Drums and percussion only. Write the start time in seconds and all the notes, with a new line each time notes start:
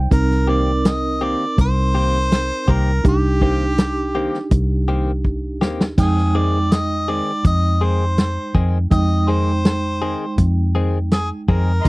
0.11 kick, closed hi-hat
0.31 snare
0.85 snare, closed hi-hat
1.58 kick, closed hi-hat
2.32 snare, closed hi-hat
2.68 kick
3.05 kick, closed hi-hat
3.41 kick
3.78 snare, closed hi-hat
4.34 snare
4.51 kick, closed hi-hat
5.25 kick
5.62 snare
5.81 snare
5.98 kick, closed hi-hat, crash
6.17 snare
6.72 snare, closed hi-hat
7.45 kick, closed hi-hat
8.18 snare, closed hi-hat
8.55 kick
8.91 kick, closed hi-hat
9.65 snare, closed hi-hat
10.38 kick, closed hi-hat
11.11 snare, closed hi-hat
11.48 kick
11.85 kick, closed hi-hat